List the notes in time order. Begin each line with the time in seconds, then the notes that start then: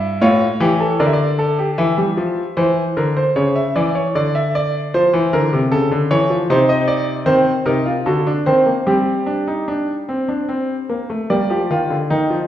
Already playing: G2 E4 E5
0.21 A2 F4 C#5
0.60 E3 G4
0.80 A4
0.99 D3 A#4 D5
1.06 E5
1.13 D5
1.39 A4
1.59 G4
1.78 E3 E5
1.98 G3
2.17 F3
2.57 E3 C5
2.97 D3 A#4
3.17 C5
3.36 C#3 C#5
3.56 E5
3.76 E3 D5
3.95 C#5
4.15 D3 D5
4.35 E5
4.55 D5
4.94 F3 C5
5.13 E3
5.33 D3 A#4
5.53 C3
5.72 C#3 A4
5.91 D3
6.11 E3 C#5
6.30 F3
6.50 C3 D#4 C5
6.69 D#5
6.88 D5
7.26 D#3 C4 C5
7.66 C3 D#4 A#4
7.86 F4
8.06 D3 F#4 A4
8.27 D4
8.46 D#3 C4 C5
8.66 A#3
8.87 G3 C4 G4
9.26 D4
9.48 D#4
9.68 D4
10.09 C4
10.29 D4
10.49 C4
10.89 A#3
11.10 A3
11.30 G3 A#3 D5
11.50 F3 G4
11.70 D#3 F4
11.90 D3
12.10 D#3 D#4
12.30 F3